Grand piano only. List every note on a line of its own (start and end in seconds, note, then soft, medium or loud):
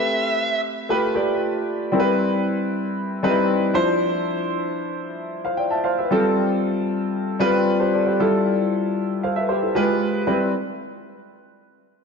0.00 0.60 A3 medium
0.00 0.60 C4 medium
0.00 0.60 G4 medium
0.00 0.60 B4 medium
0.89 1.08 A3 medium
0.89 1.08 F4 medium
0.89 1.09 G4 medium
0.89 1.09 B4 loud
1.14 1.71 A3 medium
1.14 1.71 F4 medium
1.14 1.72 G4 medium
1.14 1.72 D5 medium
1.92 2.68 G3 medium
1.92 2.68 C4 medium
1.92 2.68 E4 medium
1.92 2.00 A#4 medium
2.00 2.72 B4 medium
3.23 3.75 G3 medium
3.23 3.76 C4 medium
3.23 3.30 D#4 medium
3.23 3.76 B4 loud
3.30 3.73 E4 medium
3.74 4.58 F3 medium
3.74 4.58 D4 medium
3.74 4.58 E4 medium
3.74 4.59 C5 loud
5.45 5.58 C5 medium
5.45 5.57 F5 medium
5.57 5.70 D5 medium
5.57 5.70 G5 medium
5.70 5.83 E5 medium
5.70 5.83 A5 medium
5.84 5.97 C5 medium
5.84 5.96 F5 medium
5.98 6.23 B4 medium
5.98 6.22 E5 medium
6.11 6.85 G3 medium
6.11 6.86 C4 medium
6.11 6.86 F4 medium
6.11 6.86 A4 loud
7.39 7.96 G3 medium
7.39 7.97 C4 medium
7.39 7.97 F4 medium
7.39 7.66 B4 loud
7.80 7.92 G4 medium
7.80 7.92 C5 medium
7.94 8.06 A4 medium
7.94 8.05 D5 medium
8.07 8.31 G4 medium
8.07 8.31 C5 medium
8.20 8.94 G3 medium
8.20 8.94 E4 medium
8.20 8.94 F4 medium
8.20 8.94 A4 medium
9.23 9.36 C5 medium
9.23 9.35 F5 medium
9.36 9.48 B4 medium
9.36 9.48 E5 medium
9.49 9.62 G4 medium
9.49 9.61 C5 medium
9.62 9.87 E4 medium
9.62 9.87 A4 medium
9.75 10.16 G#3 medium
9.75 10.16 F4 medium
9.75 10.17 G4 medium
9.75 10.17 B4 loud
10.27 10.51 G3 medium
10.27 10.51 C4 medium
10.27 10.51 E4 medium
10.27 10.51 B4 medium